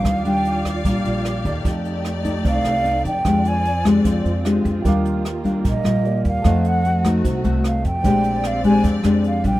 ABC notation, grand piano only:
X:1
M:4/4
L:1/8
Q:1/4=150
K:Eb
V:1 name="Grand piano"
z8 | z8 | z8 | [GBfd']6 [GBdf]2 |
[=Ace_g]8 | [cdg]8 |]